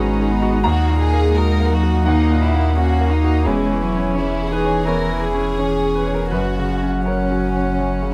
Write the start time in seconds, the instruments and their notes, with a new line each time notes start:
Already playing: sub bass G#1, grand piano G#2 D#3 B3 F#4 G#4 B5, harmonium G#3 F#4 D#5, cello G#3, viola C#4, violin section D#4
0.20 grand piano G#4
0.31 viola B3
0.42 grand piano F#4
0.64 grand piano D#2 A#5, sub bass D#2, cello A#3, harmonium A#3 F#4, viola D#4, violin section F#4
0.90 grand piano A#2
1.00 violin section G#4
1.13 grand piano A#3
1.34 cello G#3, grand piano F#4, violin section A#4
1.60 grand piano A#3
1.70 cello F#3, violin section F#4
1.83 grand piano F#4
2.05 grand piano D#2 F#5, cello A#3, viola D#4, violin section D#4
2.30 grand piano A#2
2.44 violin section E4
2.54 grand piano A#3
2.76 cello A#3, viola C#4, grand piano F#4, violin section F#4
3.01 grand piano A#3
3.12 viola D#4, violin section D#4
3.24 grand piano F#4
3.45 sub bass E1, grand piano E2 G#4, cello G#3, harmonium C#4 G#4 C#5, viola E4
3.49 violin section C#4
3.72 grand piano E3
3.81 cello F#3
3.97 grand piano C#4
4.15 cello E3, viola C#4, violin section E4, grand piano C#5
4.42 grand piano G#4
4.51 viola D#4, violin section G#4, grand piano B4
4.65 grand piano C#5
4.85 grand piano E2 C#5, viola E4, violin section A#4
5.11 grand piano E3
5.22 violin section G#4
5.34 grand piano C#4
5.57 cello E3, viola C#4, grand piano C#5
5.83 grand piano G#4
5.95 grand piano B4
6.06 grand piano C#5
6.14 grand piano A#4
6.30 sub bass F#1, grand piano F#2 B4, cello F#3, viola C#4, violin section F#4, harmonium F#4 F#5
6.58 grand piano C#3
6.83 grand piano C#4
7.06 violin section C#4, grand piano A#4 C#5
7.32 grand piano F#4
7.55 grand piano C#5
7.79 grand piano F#2
8.02 grand piano C#3